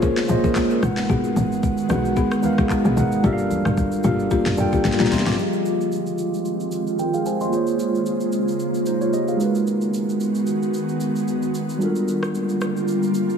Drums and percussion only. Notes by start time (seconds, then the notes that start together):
0.02 kick, shaker
0.17 snare, shaker
0.29 high conga, shaker
0.44 kick, high conga, shaker
0.56 kick, snare, clap, shaker
0.71 shaker
0.83 cross-stick, high conga, low conga, shaker
0.97 snare, shaker
1.09 kick, low conga, shaker
1.24 shaker
1.36 high conga, shaker
1.52 shaker
1.63 kick, shaker
1.77 shaker
1.89 cross-stick, high conga, low conga, shaker
2.05 shaker
2.16 kick, shaker
2.31 cross-stick, shaker
2.43 high conga, shaker
2.58 kick, cross-stick, high conga, shaker
2.70 kick, clap, shaker
2.85 shaker
2.97 high conga, low conga, shaker
3.12 shaker
3.24 kick, low conga, shaker
3.38 shaker
3.51 high conga, shaker
3.65 cross-stick, shaker
3.77 kick, shaker
3.92 shaker
4.04 high conga, low conga, shaker
4.19 shaker
4.31 kick, shaker
4.46 snare, shaker
4.57 high conga, shaker
4.73 kick, high conga, shaker
4.85 kick, snare, shaker
4.92 snare
5.00 snare, shaker
5.06 snare
5.12 snare, open hi-hat, high conga, low conga, shaker
5.19 snare
5.26 snare, shaker
5.32 snare
5.39 shaker
5.53 shaker
5.66 shaker
5.81 shaker
5.92 shaker
6.06 shaker
6.18 shaker
6.34 shaker
6.45 shaker
6.60 shaker
6.72 shaker
6.87 shaker
6.99 shaker
7.14 shaker
7.26 shaker
7.41 shaker
7.53 shaker
7.67 shaker
7.79 shaker
7.95 shaker
8.06 shaker
8.20 shaker
8.32 shaker
8.48 shaker
8.60 shaker
8.74 shaker
8.86 shaker
9.01 shaker
9.13 shaker
9.28 shaker
9.40 shaker
9.55 shaker
9.67 shaker
9.81 shaker
9.94 shaker
10.09 shaker
10.20 shaker
10.35 shaker
10.47 shaker
10.62 shaker
10.74 shaker
10.89 shaker
11.00 shaker
11.16 shaker
11.28 shaker
11.42 shaker
11.55 shaker
11.69 shaker
11.81 shaker
11.95 shaker
12.08 shaker
12.23 cross-stick, shaker
12.35 shaker
12.49 shaker
12.61 cross-stick, shaker
12.77 shaker
12.88 shaker
13.03 shaker
13.14 shaker
13.30 shaker